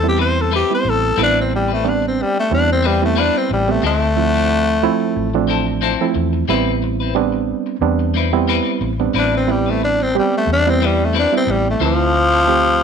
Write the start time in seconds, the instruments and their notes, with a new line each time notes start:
Already playing: fingered electric bass E2
0.03 reed electric piano G3 B3 C4 E4, muted clean electric guitar stroke
0.08 tenor saxophone G4
0.17 clean electric guitar G3 C4 E4 B4
0.21 tenor saxophone C5
0.36 muted clean electric guitar stroke
0.41 tenor saxophone A4
0.51 clean electric guitar G3 C4 E4 B4
0.55 tenor saxophone G4
0.70 reed electric piano G3 B3 C4 E4
0.74 tenor saxophone C5
0.84 fingered electric bass A1, muted clean electric guitar stroke
0.90 tenor saxophone A4
1.03 muted clean electric guitar stroke
1.16 fingered electric bass A1, clean electric guitar G3 C4 E4 B4, reed electric piano G3 B3 C4 E4
1.23 tenor saxophone D4
1.41 tenor saxophone C4
1.50 muted clean electric guitar stroke
1.55 tenor saxophone G3
1.68 clean electric guitar C4 E4 B4
1.73 tenor saxophone A3
1.84 reed electric piano G3 B3 C4 D4, muted clean electric guitar stroke
1.89 tenor saxophone D4
2.02 muted clean electric guitar stroke
2.07 tenor saxophone C4
2.22 tenor saxophone G3
2.35 muted clean electric guitar stroke
2.40 tenor saxophone A3
2.51 fingered electric bass E2, reed electric piano G3 B3 C4 E4, tenor saxophone D4
2.68 muted clean electric guitar stroke
2.72 tenor saxophone C4
2.82 clean electric guitar G3 C4 E4 B4
2.86 tenor saxophone G3
3.02 reed electric piano G3 B3 C4 E4, tenor saxophone A3, muted clean electric guitar stroke
3.16 clean electric guitar G3 C4 E4 B4
3.20 tenor saxophone D4
3.38 tenor saxophone C4
3.50 fingered electric bass A1, tenor saxophone G3, muted clean electric guitar stroke
3.68 reed electric piano G3 B3 C4 G4, tenor saxophone A3, muted clean electric guitar stroke
3.82 fingered electric bass D2, clean electric guitar F3 C4 E4 A4, tenor saxophone A3
4.16 reed electric piano F3 A3 C4 E4, muted clean electric guitar stroke
4.34 clean electric guitar C4 E4 A4
4.49 muted clean electric guitar stroke
4.67 muted clean electric guitar stroke
4.83 reed electric piano F3 A3 C4 E4
5.00 muted clean electric guitar stroke
5.16 fingered electric bass A1
5.34 reed electric piano F3 A3 C4 D4, muted clean electric guitar stroke
5.47 clean electric guitar F3 C4 E4 A4
5.67 muted clean electric guitar stroke
5.81 clean electric guitar F3 C4 E4 A4
6.01 reed electric piano F3 A3 C4 E4
6.15 fingered electric bass E2, muted clean electric guitar stroke
6.33 muted clean electric guitar stroke
6.48 fingered electric bass A1, clean electric guitar G3 C4 E4 B4, reed electric piano G3 B3 C4 E4
6.82 muted clean electric guitar stroke
7.00 clean electric guitar C4 E4 B4
7.14 reed electric piano G3 B3 C4 D4, muted clean electric guitar stroke
7.33 muted clean electric guitar stroke
7.66 muted clean electric guitar stroke
7.81 fingered electric bass E2, reed electric piano G3 B3 C4 D4
7.99 muted clean electric guitar stroke
8.14 clean electric guitar G3 C4 E4 B4
8.33 reed electric piano G3 B3 C4 E4, muted clean electric guitar stroke
8.48 clean electric guitar G3 C4 E4 B4
8.81 fingered electric bass A1, muted clean electric guitar stroke
8.99 reed electric piano G3 B3 C4 D4, muted clean electric guitar stroke
9.14 fingered electric bass A1, clean electric guitar G3 C4 E4 B4
9.18 tenor saxophone D4
9.37 tenor saxophone C4
9.47 reed electric piano G3 B3 C4 E4, tenor saxophone G3, muted clean electric guitar stroke
9.66 tenor saxophone A3, clean electric guitar C4 E4 B4
9.82 tenor saxophone D4, muted clean electric guitar stroke
10.00 tenor saxophone C4, muted clean electric guitar stroke
10.15 reed electric piano G3 B3 C4 G4
10.19 tenor saxophone G3
10.34 tenor saxophone A3, muted clean electric guitar stroke
10.47 fingered electric bass E2
10.53 tenor saxophone D4
10.66 reed electric piano G3 B3 C4 E4, tenor saxophone C4, muted clean electric guitar stroke
10.80 clean electric guitar G3 C4 E4 B4
10.85 tenor saxophone G3
10.99 muted clean electric guitar stroke
11.05 tenor saxophone A3
11.13 clean electric guitar G3 C4 E4 B4
11.19 tenor saxophone D4
11.32 reed electric piano G3 B3 C4 E4
11.37 tenor saxophone C4
11.47 fingered electric bass A1, tenor saxophone G3, muted clean electric guitar stroke
11.65 muted clean electric guitar stroke
11.70 tenor saxophone A3
11.80 fingered electric bass D2, clean electric guitar F3 C4 E4 A4, reed electric piano F3 A3 C4 E4
11.85 tenor saxophone F3
12.14 muted clean electric guitar stroke
12.32 clean electric guitar C4 E4 A4
12.47 reed electric piano F3 A3 C4 G4, muted clean electric guitar stroke
12.66 muted clean electric guitar stroke